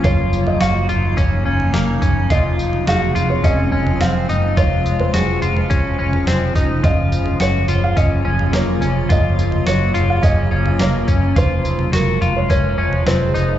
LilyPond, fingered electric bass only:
\new Staff \with { instrumentName = "Fingered electric bass" } { \clef bass \time 4/4 \key ges \lydian \tempo 4 = 106 ges,,4 ges,,8 ges,,8 ges,,8 ges,,8 f,,8 ges,,8 | f,,4 f,,8 f,,8 f,,8 f,,8 f,,8 ges,,8 | f,,4 f,,8 f,,8 f,,8 f,,8 f,,8 f,,8 | ges,,4 ges,,8 ges,,8 ges,,8 ges,,8 f,,8 f,,8 |
ges,,4 ges,,8 ges,,8 ges,,8 ges,,8 f,,8 ges,,8 | f,,4 f,,8 f,,8 f,,8 f,,8 f,,8 f,,8 | }